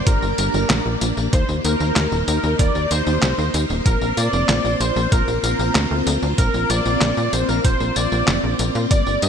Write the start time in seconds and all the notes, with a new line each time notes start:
Already playing: A#3 D4 G4 D5
0.06 G1 A#4, kick, closed hi-hat, tambourine
0.22 G1, tambourine
0.38 G1 A#4, closed hi-hat, tambourine
0.54 G1, tambourine
0.70 A#1, snare, clap, closed hi-hat, tambourine
0.86 A#1
1.01 A#1, closed hi-hat, tambourine
1.17 A#1, tambourine
1.33 D#2 D#4 G4 C5, kick, closed hi-hat, tambourine
1.49 D#2, tambourine
1.65 D#2 A#4, closed hi-hat, tambourine
1.80 D#2, tambourine
1.96 D#2, snare, clap, closed hi-hat, tambourine
2.12 D#1, tambourine
2.28 D#2 A#4, closed hi-hat, tambourine
2.44 D#2, tambourine
2.59 D#2 D5, kick, closed hi-hat, tambourine
2.75 D#2, tambourine
2.91 D#2 C5, closed hi-hat, tambourine
3.07 D#2, tambourine
3.22 C2, snare, clap, closed hi-hat, tambourine
3.38 D#2, tambourine
3.54 D#2, closed hi-hat, tambourine
3.70 D#1, tambourine
3.86 A#1 C4 F4 A#4, kick, closed hi-hat, tambourine
4.01 A#1, tambourine
4.17 A#2 D5, closed hi-hat, tambourine
4.33 F1, tambourine
4.49 A#1, snare, clap, closed hi-hat, tambourine
4.65 A#1, tambourine
4.80 A#1 C5, closed hi-hat, tambourine
4.96 A#1, tambourine
5.12 A#1 A#4, kick, closed hi-hat, tambourine
5.28 A#1, tambourine
5.43 A#1 A#4, closed hi-hat, tambourine
5.59 A#1, tambourine
5.75 D2, snare, clap, closed hi-hat, tambourine
5.91 D2
6.07 D2, closed hi-hat, tambourine
6.22 D2, tambourine
6.38 A#1 A#4, kick, closed hi-hat, tambourine
6.54 A#1, tambourine
6.70 A#1 D5, closed hi-hat, tambourine
6.86 A#1, tambourine
7.01 A#1, snare, clap, closed hi-hat, tambourine
7.17 A#2, tambourine
7.33 A#1 C5, closed hi-hat, tambourine
7.49 A#1 A#4, tambourine
7.65 A#1 C5, kick, closed hi-hat, tambourine
7.80 A#1, tambourine
7.96 A#1 D5, closed hi-hat, tambourine
8.12 A#1, tambourine
8.28 F1, snare, clap, closed hi-hat, tambourine
8.44 A#1
8.59 A#1, closed hi-hat, tambourine
8.75 A#2, tambourine
8.91 G1 A#3 G4 A#4 D5, kick, closed hi-hat, tambourine
9.07 G1, tambourine
9.22 G2 F5, closed hi-hat, tambourine